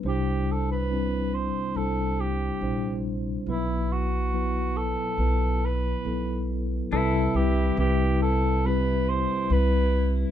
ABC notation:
X:1
M:4/4
L:1/16
Q:1/4=70
K:Clyd
V:1 name="Cor anglais"
G2 A B3 c2 A2 G4 z2 | E2 F4 A4 B4 z2 | A2 G2 G2 A2 B2 c2 B3 z |]
V:2 name="Pedal steel guitar"
z16 | z16 | E16 |]
V:3 name="Tine electric piano"
[G,DEc]4 [G,CDE]4 [G,DEc]4 [G,DEc]4 | [F,B,EB]4 [F,B,EB]4 [F,B,EB]4 [F,B,EA]4 | [G,CEB]2 [G,CEB]2 [G,CEB]4 [G,CEG]4 [G,CEB]4 |]
V:4 name="Tine electric piano" clef=bass
[C,,C,]16 | [B,,,B,,]16 | [C,,C,]16 |]
V:5 name="Upright bass" clef=bass
C,,8 C,,4 ^A,,,4 | B,,,8 B,,,4 B,,,4 | C,,2 C,,2 C,,8 C,,4 |]